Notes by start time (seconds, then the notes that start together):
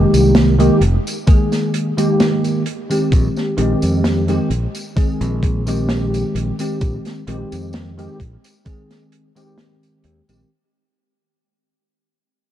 Already playing: D#3 G#3 A#3 G4
0.13 C2, closed hi-hat, tambourine
0.35 snare, closed hi-hat, tambourine
0.59 D#3 G#3 A#3 G4, closed hi-hat, tambourine
0.81 F1, closed hi-hat
1.07 closed hi-hat, tambourine
1.27 D#3 G#3 A#3 G#4, kick, closed hi-hat, tambourine
1.52 snare, closed hi-hat, tambourine
1.74 closed hi-hat
1.97 D#3 G#3 A#3 G4, closed hi-hat, tambourine
2.20 snare, closed hi-hat, tambourine
2.44 closed hi-hat, tambourine
2.66 closed hi-hat
2.90 D#3 G#3 C4 G4, closed hi-hat, tambourine
3.12 A#1, kick, closed hi-hat, tambourine
3.36 snare, tambourine
3.57 A#1 D#3 G#3 C4 G4, closed hi-hat
3.82 F2, closed hi-hat, tambourine
4.04 snare, closed hi-hat, tambourine
4.28 D#3 G#3 C4 G4, closed hi-hat, tambourine
4.50 A#1, closed hi-hat
4.75 closed hi-hat, tambourine
4.96 D#3 G#3 C4 G#4, muted fingered electric bass stroke, kick, closed hi-hat, tambourine
5.21 A#1, closed hi-hat, tambourine
5.43 kick, closed hi-hat
5.67 D#3 G#3 C4 G4, closed hi-hat, tambourine
5.89 snare, closed hi-hat, tambourine
6.14 closed hi-hat, tambourine
6.35 A#1, closed hi-hat
6.59 D#3 G#3 C4 G4, closed hi-hat, tambourine
6.81 A#1, kick, closed hi-hat, tambourine
7.05 snare, closed hi-hat, tambourine
7.27 A#1 D#3 G#3 C4 G4, closed hi-hat
7.52 F2, closed hi-hat, tambourine
7.73 snare, closed hi-hat, tambourine
7.98 D#3 G#3 C4 G4, closed hi-hat, tambourine
8.20 A#1, kick, closed hi-hat
8.44 closed hi-hat, tambourine
8.65 D#3 G#3 C4 G#4, kick, closed hi-hat, tambourine
8.91 snare, closed hi-hat, tambourine
9.12 closed hi-hat
9.36 D#3 G#3 C4 G4, closed hi-hat, tambourine
9.58 snare, closed hi-hat, tambourine
9.83 closed hi-hat, tambourine
10.04 D#2, closed hi-hat
10.29 A#1 D#3 G#3 C4 G4, closed hi-hat, tambourine